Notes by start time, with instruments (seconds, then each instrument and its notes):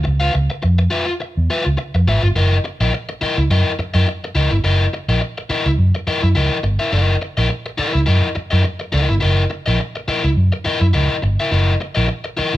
0.04 fingered electric bass C#2, muted overdriven electric guitar stroke
0.20 overdriven electric guitar F4 B4 F5
0.34 fingered electric bass C#2, muted overdriven electric guitar stroke
0.50 muted overdriven electric guitar stroke
0.62 fingered electric bass F2, muted overdriven electric guitar stroke
0.79 muted overdriven electric guitar stroke
0.90 overdriven electric guitar F4 B4 E5
1.07 muted overdriven electric guitar stroke
1.20 muted overdriven electric guitar stroke
1.37 fingered electric bass E2
1.50 overdriven electric guitar F4 B4 E5
1.65 fingered electric bass C#2, muted overdriven electric guitar stroke
1.77 muted overdriven electric guitar stroke
1.94 fingered electric bass F2, muted overdriven electric guitar stroke
2.07 fingered electric bass G#1, overdriven electric guitar F4 B4 E5
2.23 fingered electric bass G1, muted overdriven electric guitar stroke
2.36 fingered electric bass F#1, overdriven electric guitar E4 A#4 D#5
2.64 muted overdriven electric guitar stroke
2.80 fingered electric bass A#1, overdriven electric guitar E4 A#4 D#5
2.93 muted overdriven electric guitar stroke
3.09 muted overdriven electric guitar stroke
3.21 overdriven electric guitar E4 A#4 D#5, muted fingered electric bass stroke
3.38 fingered electric bass C#2, muted overdriven electric guitar stroke
3.50 fingered electric bass F#2, overdriven electric guitar E4 A#4 D#5
3.79 muted overdriven electric guitar stroke, muted fingered electric bass stroke
3.94 fingered electric bass F#2, overdriven electric guitar E4 A#4 D#5
4.08 muted overdriven electric guitar stroke
4.24 muted overdriven electric guitar stroke
4.35 fingered electric bass C#2, overdriven electric guitar E4 A#4 D#5
4.51 fingered electric bass G1, muted overdriven electric guitar stroke
4.64 fingered electric bass F#1, overdriven electric guitar E4 A#4 D#5
4.93 muted overdriven electric guitar stroke
5.08 fingered electric bass A#1, overdriven electric guitar E4 A#4 D#5
5.21 muted overdriven electric guitar stroke
5.38 muted overdriven electric guitar stroke
5.50 overdriven electric guitar E4 A#4 D#5, muted fingered electric bass stroke
5.66 fingered electric bass C#2, muted overdriven electric guitar stroke
5.79 fingered electric bass F#2
5.95 muted overdriven electric guitar stroke
6.07 overdriven electric guitar E4 A#4 D#5, muted fingered electric bass stroke
6.23 fingered electric bass F#2, muted overdriven electric guitar stroke
6.35 fingered electric bass C#2, overdriven electric guitar E4 A#4 D#5
6.63 fingered electric bass G1, muted overdriven electric guitar stroke
6.79 overdriven electric guitar E4 A#4 E5
6.92 fingered electric bass F#1, overdriven electric guitar E4 A#4 D#5
7.22 muted overdriven electric guitar stroke
7.37 fingered electric bass A#1, overdriven electric guitar E4 A#4 D#5
7.49 muted overdriven electric guitar stroke
7.66 muted overdriven electric guitar stroke
7.78 overdriven electric guitar E4 A#4 D#5, muted fingered electric bass stroke
7.93 fingered electric bass C#2, muted overdriven electric guitar stroke
8.06 fingered electric bass F#2, overdriven electric guitar E4 A#4 D#5
8.35 muted overdriven electric guitar stroke, muted fingered electric bass stroke
8.51 fingered electric bass F#2, overdriven electric guitar E4 A#4 D#5
8.64 muted overdriven electric guitar stroke
8.80 muted overdriven electric guitar stroke
8.92 fingered electric bass C#2, overdriven electric guitar E4 A#4 D#5
9.09 fingered electric bass G1, muted overdriven electric guitar stroke
9.21 fingered electric bass F#1, overdriven electric guitar E4 A#4 D#5
9.50 muted overdriven electric guitar stroke
9.66 fingered electric bass A#1, overdriven electric guitar E4 A#4 D#5
9.80 muted overdriven electric guitar stroke
9.96 muted overdriven electric guitar stroke
10.08 overdriven electric guitar E4 A#4 D#5, muted fingered electric bass stroke
10.24 fingered electric bass C#2, muted overdriven electric guitar stroke
10.37 fingered electric bass F#2
10.52 muted overdriven electric guitar stroke
10.65 overdriven electric guitar E4 A#4 D#5, muted fingered electric bass stroke
10.81 fingered electric bass F#2, muted overdriven electric guitar stroke
10.93 fingered electric bass C#2, overdriven electric guitar E4 A#4 D#5
11.22 fingered electric bass G1, muted overdriven electric guitar stroke
11.40 overdriven electric guitar E4 A#4 E5
11.52 fingered electric bass F#1, overdriven electric guitar E4 A#4 D#5
11.80 muted overdriven electric guitar stroke
11.95 fingered electric bass A#1, overdriven electric guitar E4 A#4 D#5
12.08 muted overdriven electric guitar stroke
12.24 muted overdriven electric guitar stroke
12.37 overdriven electric guitar E4 A#4 D#5, muted fingered electric bass stroke